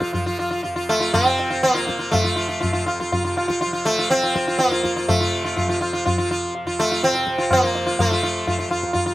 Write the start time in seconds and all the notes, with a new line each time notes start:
Already playing: F2 C3 F3
0.00 F4, tabla ke
0.13 F3 F4, tabla tin, tabla ge
0.26 F4
0.39 F4, tabla na
0.51 F4
0.63 F2 F4, tabla tin
0.76 F4
0.89 A3, tabla na
1.00 F4
1.14 C3 C4, tabla na, tabla ge
1.25 F4
1.39 tabla te
1.50 F4
1.63 A#3, tabla te
1.68 F3
1.74 F4, tabla te
1.87 F4, tabla ke
1.99 F4, tabla te
2.12 A3, tabla tin, tabla ge
2.17 F3
2.24 F4
2.36 F4
2.48 F4
2.60 F4, tabla tin, tabla ge
2.68 F2
2.73 F4
2.86 F4, tabla na
3.00 F4, tabla ke
3.12 F4, tabla tin, tabla ge
3.17 C3
3.25 F4
3.37 F4, tabla na
3.48 F4, tabla ke
3.61 F4, tabla tin
3.66 F3
3.73 F4
3.85 A3
3.99 F4
4.10 C4, tabla te
4.16 F3
4.23 F4, tabla te
4.35 F4, tabla ke
4.47 F4, tabla te
4.59 A#3, tabla te
4.65 F2
4.71 F4, tabla te
4.83 F4, tabla ke
4.96 F4, tabla te
5.08 A3, tabla tin, tabla ge
5.16 C3
5.20 F4
5.45 F4
5.56 F4, tabla tin, tabla ge
5.66 F3 F4
5.81 F4, tabla na
5.93 F4
6.06 F4, tabla tin, tabla ge
6.16 F3 F4
6.31 F4
6.55 tabla tin
6.64 F2 F4
6.79 A3, tabla na
6.92 F4
7.03 C4, tabla te
7.12 C3, tabla te
7.27 tabla ke
7.38 F4, tabla te
7.51 A#3, tabla na, tabla ge
7.63 F3 F4
7.75 tabla te
7.86 F4
7.99 A3, tabla tin, tabla ge
8.10 F3 F4
8.23 F4
8.47 F4, tabla tin, tabla ge
8.58 F2 F4
8.71 F4, tabla na
8.83 tabla ke
8.93 F4, tabla tin, tabla ge
9.06 C3 F4